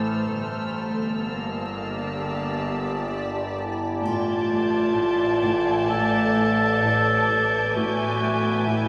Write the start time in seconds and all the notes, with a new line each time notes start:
Already playing: A1 A3 A4 C5 A5 E6 F6
0.35 G1 A3 G4 D5 A5
1.29 A#3
3.60 E4
4.05 A1 A2 A3 F4 A4 D5 A5 D6 G6 G#6, triangle
4.51 A3
4.98 A2
5.43 A2
5.89 A2 A4
6.36 A2
6.82 A2
7.28 A2
7.74 A1 A2 B3 F#4 B4 E5 G#5
7.84 G6
8.21 A3
8.67 A2 E4